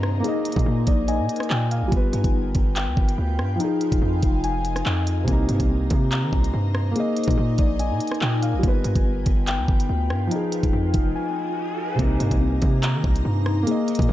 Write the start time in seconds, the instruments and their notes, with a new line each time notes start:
Already playing: 808-style bass G2, felt piano C3 A#3 D#4, synth keys C4 A#5, ambient pad D#4 C5 A#5, downlifter
0.03 cross-stick
0.20 felt piano A#3
0.24 synth keys A#3, felt piano G#4, ambient pad A#4 G#5, closed hi-hat
0.28 felt piano D#5
0.45 closed hi-hat
0.52 closed hi-hat
0.56 808-style bass A#2, kick, closed hi-hat
0.66 808-style bass A#2, synth keys A#3
0.87 808-style bass A#1, felt piano D5, kick, closed hi-hat
1.08 felt piano D#5, synth keys G#5, closed hi-hat
1.19 808-style bass A#2
1.29 closed hi-hat
1.36 closed hi-hat
1.40 cross-stick, closed hi-hat
1.50 808-style bass A#2, felt piano G5, clap
1.71 felt piano F5, closed hi-hat
1.82 808-style bass G#1
1.88 felt piano G3
1.92 808-style bass G1, synth keys B3, ambient pad F4 B4 G5, felt piano F4, kick, closed hi-hat
1.96 felt piano B4
2.13 808-style bass G2, closed hi-hat
2.24 808-style bass G1, kick, closed hi-hat
2.34 synth keys B3
2.55 808-style bass G1, kick, closed hi-hat
2.76 synth keys G5, clap, closed hi-hat
2.87 808-style bass D2
2.97 808-style bass G1, kick
3.09 closed hi-hat
3.18 808-style bass D2
3.39 808-style bass G2, cross-stick
3.56 felt piano F3
3.60 synth keys D#4, felt piano D#4, ambient pad D#5 G#5, closed hi-hat
3.64 felt piano G#4
3.81 closed hi-hat
3.92 808-style bass D#1, kick, closed hi-hat
4.01 808-style bass F2, synth keys D#4
4.23 808-style bass F1, kick, closed hi-hat
4.44 synth keys G#5, closed hi-hat
4.65 closed hi-hat
4.76 cross-stick, closed hi-hat
4.86 808-style bass F2, clap
5.07 closed hi-hat
5.24 felt piano C3
5.28 808-style bass C2, felt piano A#3, synth keys C4, ambient pad D#4 C5 A#5, kick, closed hi-hat
5.32 felt piano D#4
5.49 808-style bass G2, closed hi-hat
5.60 808-style bass C2, kick, closed hi-hat
5.70 synth keys C4
5.90 808-style bass C3, kick, closed hi-hat
6.11 synth keys A#5, clap, closed hi-hat
6.23 808-style bass D#3
6.33 808-style bass C2, kick
6.44 closed hi-hat
6.54 808-style bass G2
6.75 cross-stick
6.91 felt piano A#3
6.96 synth keys A#3, felt piano G#4, ambient pad A#4 G#5, closed hi-hat
7.00 felt piano D#5
7.17 closed hi-hat
7.24 closed hi-hat
7.28 808-style bass A#2, kick, closed hi-hat
7.37 808-style bass A#2, synth keys A#3
7.58 808-style bass A#1, felt piano D5, kick, closed hi-hat
7.79 felt piano D#5, synth keys G#5, closed hi-hat
7.91 808-style bass A#2
8.00 closed hi-hat
8.07 closed hi-hat
8.12 cross-stick, closed hi-hat
8.21 808-style bass A#2, felt piano G5, clap
8.43 felt piano F5, closed hi-hat
8.54 808-style bass G#1
8.59 felt piano G3
8.63 808-style bass G1, synth keys B3, felt piano F4, ambient pad F4 B4 G5, kick, closed hi-hat
8.68 felt piano B4
8.84 808-style bass G2, closed hi-hat
8.95 808-style bass G1, kick, closed hi-hat
9.05 synth keys B3
9.26 808-style bass G1, kick, closed hi-hat
9.47 synth keys G5, clap, closed hi-hat
9.58 808-style bass D2
9.68 808-style bass G1, kick
9.80 closed hi-hat
9.89 808-style bass D2
10.10 808-style bass G2, cross-stick
10.27 felt piano F3, synth keys D#4
10.31 felt piano D#4, ambient pad D#5 G#5, closed hi-hat, riser
10.36 felt piano G#4
10.52 closed hi-hat
10.63 808-style bass D#1, kick, closed hi-hat
10.73 808-style bass F2, synth keys D#4
10.94 808-style bass F1, kick, closed hi-hat
11.15 synth keys G#5
11.95 felt piano C3
11.99 808-style bass C2, felt piano A#3, synth keys C4, ambient pad D#4 C5 A#5, kick, closed hi-hat
12.03 felt piano D#4
12.20 808-style bass G2, closed hi-hat
12.31 808-style bass C2, kick, closed hi-hat
12.41 synth keys C4
12.62 808-style bass C3, kick, closed hi-hat
12.82 synth keys A#5, clap, closed hi-hat
12.94 808-style bass D#3
13.04 808-style bass C2, kick
13.16 closed hi-hat
13.25 808-style bass G2
13.46 cross-stick
13.63 felt piano A#3
13.67 synth keys A#3, felt piano G#4, closed hi-hat
13.71 felt piano D#5
13.88 closed hi-hat
13.95 closed hi-hat
13.99 808-style bass A#2, kick, closed hi-hat
14.09 808-style bass A#2, synth keys A#3